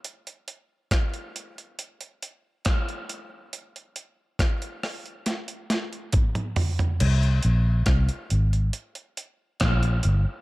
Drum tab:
CC |----------------|----------------|x---------------|
HH |xxx-xxxxxxx-xxx-|xxx-xxoxxxxxxxox|xxx-xxxxxxx-xxx-|
SD |----r-------r---|----r-r-o-o-----|----r-------r---|
T2 |----------------|------------oo--|----------------|
FT |----------------|--------------oo|----------------|
BD |----o-------o---|----o-------o---|----o-------o---|